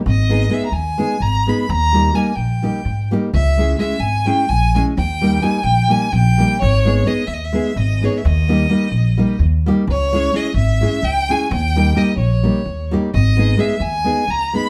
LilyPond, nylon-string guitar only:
\new Staff \with { instrumentName = "Nylon-string guitar" } { \time 7/8 \tempo 4 = 128 r8 <aes ces' ees' aes'>8 <aes ces' ees' aes'>8 r8 <aes ces' ees' aes'>8 r8 <aes ces' ees' aes'>8 | r8 <g bes ees' g'>8 <g bes ees' g'>8 r8 <g bes ees' g'>8 r8 <g bes ees' g'>8 | r8 <aes des' fes' aes'>8 <aes des' fes' aes'>8 r8 <aes des' fes' aes'>8 r8 <aes des' fes' aes'>8 | r8 <g bes ees' g'>8 <g bes ees' g'>8 r8 <g bes ees' g'>8 r8 <g bes ees' g'>8 |
r8 <aes ces' ees' aes'>8 <aes ces' ees' aes'>8 r8 <aes ces' ees' aes'>8 r8 <aes ces' ees' aes'>8 | r8 <g bes ees' g'>8 <g bes ees' g'>8 r8 <g bes ees' g'>8 r8 <g bes ees' g'>8 | r8 <aes des' fes' aes'>8 <aes des' fes' aes'>8 r8 <aes des' fes' aes'>8 r8 <aes des' fes' aes'>8 | r8 <g bes ees' g'>8 <g bes ees' g'>8 r8 <g bes ees' g'>8 r8 <g bes ees' g'>8 |
r8 <aes ces' ees' aes'>8 <aes ces' ees' aes'>8 r8 <aes ces' ees' aes'>8 r8 <aes ces' ees' aes'>8 | }